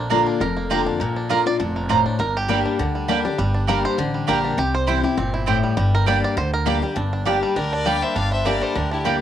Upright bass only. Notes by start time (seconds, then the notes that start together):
Already playing: A#1
0.40 F1
1.00 A#1
1.60 F1
2.19 G1
2.79 D2
3.39 G1
3.98 A1
4.28 A#1
4.58 C2
5.17 G1
5.77 G1
6.37 D2
6.96 G1
7.56 D2
8.16 G1
8.75 D2